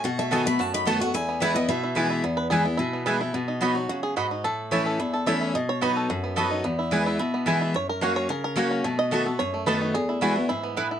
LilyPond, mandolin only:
\new Staff \with { instrumentName = "Mandolin" } { \time 4/4 \key e \major \tempo 4 = 218 r4 <b fis' dis'' a''>8 r4. <b fis' dis'' a''>8 r8 | r4 <b e' b' gis''>8 r4. <b e' b' gis''>8 r8 | r4 <b e' b' gis''>8 r4. <b e' b' gis''>8 r8 | r4 <b fis' dis'' b''>8 r4. <b fis' dis'' b''>8 r8 |
r4 <a e' cis'' a''>8 r4. <a e' cis'' a''>8 r8 | r4 <b fis' dis'' b''>8 r4. <b fis' dis'' b''>8 r8 | r4 <b e' b' gis''>8 r4. <b e' b' gis''>8 r8 | r4 <ais fis' cis'' fis''>8 r4. <ais fis' cis'' fis''>8 r8 |
r4 <b fis' dis'' a''>8 r4. <b fis' dis'' a''>8 r8 | r4 <b e' b' gis''>8 r4. <b e' b' gis''>8 r8 | }